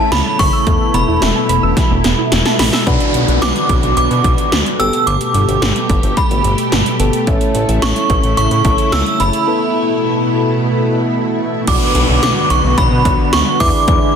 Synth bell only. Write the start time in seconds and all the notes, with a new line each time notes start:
Already playing: A5
0.12 B5
0.39 C#6
0.94 B5
3.42 D6
3.97 D6
4.80 E6
5.07 D6
6.17 B5
7.82 C#6
8.37 C#6
8.92 E6
9.20 B5
11.68 D6
12.23 D6
12.50 C#6
12.78 B5
13.33 C#6
13.60 D6